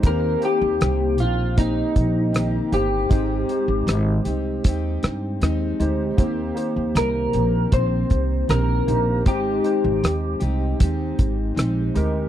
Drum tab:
HH |xxxxxxxx|xxxxxxxx|xxxxxxxx|xxxxxxxx|
SD |--r---r-|--r--rr-|--r---r-|--r---r-|
BD |o---oo--|o---o---|o---oo--|o---oo--|